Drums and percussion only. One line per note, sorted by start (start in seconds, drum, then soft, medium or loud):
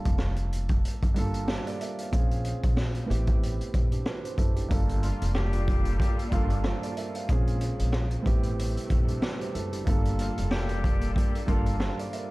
0.05 kick loud
0.05 closed hi-hat medium
0.18 cross-stick loud
0.18 snare loud
0.36 closed hi-hat medium
0.53 closed hi-hat medium
0.69 kick medium
0.69 closed hi-hat medium
0.85 closed hi-hat medium
1.03 kick medium
1.03 closed hi-hat soft
1.16 closed hi-hat medium
1.34 closed hi-hat soft
1.48 cross-stick loud
1.48 snare loud
1.67 closed hi-hat medium
1.81 closed hi-hat medium
1.98 closed hi-hat medium
2.13 kick loud
2.13 closed hi-hat medium
2.31 closed hi-hat medium
2.45 closed hi-hat medium
2.63 kick loud
2.63 closed hi-hat medium
2.77 cross-stick loud
2.77 snare loud
2.95 closed hi-hat medium
3.11 closed hi-hat medium
3.27 kick medium
3.27 closed hi-hat medium
3.43 closed hi-hat medium
3.61 closed hi-hat soft
3.74 kick medium
3.74 closed hi-hat medium
3.92 closed hi-hat soft
4.06 cross-stick loud
4.06 snare loud
4.25 closed hi-hat medium
4.38 kick medium
4.38 closed hi-hat medium
4.56 closed hi-hat medium
4.71 kick loud
4.71 closed hi-hat medium
4.89 closed hi-hat medium
5.03 closed hi-hat medium
5.22 closed hi-hat medium
5.35 cross-stick loud
5.35 snare loud
5.53 closed hi-hat medium
5.68 kick loud
5.68 closed hi-hat medium
5.85 closed hi-hat medium
6.00 kick medium
6.00 closed hi-hat medium
6.19 closed hi-hat medium
6.32 kick loud
6.32 closed hi-hat medium
6.50 closed hi-hat medium
6.64 cross-stick loud
6.64 snare loud
6.83 closed hi-hat medium
6.97 closed hi-hat medium
7.15 closed hi-hat medium
7.29 kick loud
7.29 closed hi-hat medium
7.47 closed hi-hat medium
7.61 closed hi-hat medium
7.79 closed hi-hat medium
7.93 cross-stick loud
7.93 snare loud
8.11 closed hi-hat medium
8.26 kick loud
8.26 closed hi-hat medium
8.43 closed hi-hat medium
8.59 closed hi-hat medium
8.77 closed hi-hat soft
8.90 kick medium
8.90 closed hi-hat medium
9.08 closed hi-hat soft
9.22 cross-stick loud
9.22 snare loud
9.41 closed hi-hat medium
9.55 closed hi-hat medium
9.73 closed hi-hat medium
9.87 kick loud
9.87 closed hi-hat medium
10.05 closed hi-hat medium
10.19 closed hi-hat medium
10.38 closed hi-hat medium
10.51 cross-stick loud
10.51 snare loud
10.69 closed hi-hat medium
10.84 kick loud
10.84 closed hi-hat medium
11.01 closed hi-hat medium
11.16 kick medium
11.16 closed hi-hat medium
11.35 closed hi-hat medium
11.48 kick loud
11.48 closed hi-hat medium
11.66 closed hi-hat medium
11.80 cross-stick loud
11.80 snare loud
11.99 closed hi-hat medium
12.13 closed hi-hat medium